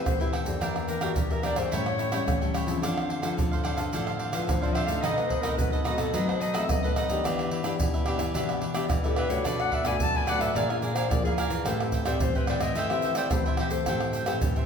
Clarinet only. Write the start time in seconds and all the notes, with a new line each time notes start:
0.06 C5
0.21 E4
0.89 A#4
1.03 F#4
1.18 G4
1.31 A#4
1.44 D5
1.57 C5
1.73 C#5
4.32 B4
4.48 C5
4.62 D5
4.74 E5
4.86 F5
5.01 D#5
5.17 B4
5.28 C5
5.41 A#4
5.57 B4
5.72 D#4
5.85 F#4
5.99 A4
6.14 B4
6.29 C5
6.41 D#5
6.55 E5
6.71 D#5
6.85 B4
9.04 A4
9.17 B4
9.30 C#5
9.46 D5
9.60 F#5
9.74 E5
9.87 G#5
10.03 A5
10.17 G#5
10.29 F#5
10.41 E5
10.56 D5
10.70 F4
10.82 G#4
10.95 C5
11.11 D5
11.25 G#4
12.06 D5
12.22 C5
12.37 B4
12.49 D5
12.62 D#5
12.77 E5
13.17 D5
13.31 C5
13.46 E4
13.59 G4
13.72 C5